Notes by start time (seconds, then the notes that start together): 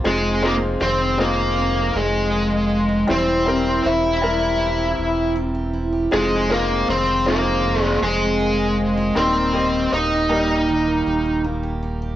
Already playing: G3 A#3 C4 F4
0.04 F1 F2 G#3 C4 D#4 F4 G#4
0.23 G#3
0.42 G#3 A#3 C4 D#4 F4 G#4 A#4
0.61 D#4
0.80 F1 D#3 C4 C5
0.99 F4
1.18 G#3 A#3 C4 D#4 F4 G#4 A#4
1.37 F4
1.56 F2
1.74 G#3
1.93 F1 G#3 F4 G#4
2.13 D#4
2.32 D#3
2.51 F4
2.70 D#4
2.89 F4
3.07 E1 E3 G3 C4 E4 G4 C5
3.27 C4
3.46 G3 C4 E4 G4 A#4
3.65 E4
3.84 E1 C4 E4 E5
4.03 G4
4.22 G3 C4 E4 G4 A#4
4.41 G4
4.59 E3
4.79 C4
4.98 E1 G4
5.17 E4
5.36 C4
5.54 G4
5.73 E4
5.92 G4
6.11 F1 F2 G#3 C4 D#4 F4 G#4
6.30 G#3
6.49 G#3 A#3 C4 D#4 F4 A#4
6.68 C4
6.87 F1 D#3 C4 C5
7.06 F4
7.26 G#3 A#3 C4 D#4 F4 G#4 A#4
7.45 F4
7.64 F2
7.80 G#3 G#4
8.02 F1 G#3 F4 G#4
8.21 C4
8.40 D#3
8.59 F4
8.78 C4
8.97 F4
9.15 D#1 D#3 G3 A#3 C4 D#4 G4 A#4 C5
9.35 A#3
9.53 G3 A#3 D#4 G4 D#5
9.73 D#4
9.92 D#1 A#3 D#4 D#5
10.12 G4
10.29 G3 A#3 D#4 G4 A#4
10.50 G4
10.68 D#3
10.87 A#3
11.06 D#1 G4
11.26 D#4
11.44 A#3
11.63 G4
11.83 D#4
12.02 G4